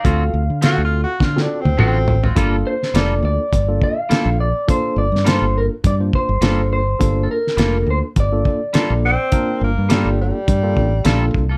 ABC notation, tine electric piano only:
X:1
M:4/4
L:1/16
Q:"Swing 16ths" 1/4=104
K:Gm
V:1 name="Tine electric piano"
[C^E^FA]3 z [CEFA]3 z2 [CEFA]2 z [CEFA]3 z | [B,DFA]3 z [B,DFA]3 z2 [B,DFA]2 z [B,DFA]3 z | [B,DFA]3 z [B,DFA]3 z2 [B,DFc]2 z [B,DFA]3 z | [B,DFA]3 z [B,DFA]3 z2 [B,DFA]2 z [B,DFA]3 z |
[B,DFB]3 z [B,DFA]3 z2 [B,DFA]2 z [B,DFA]3 z |]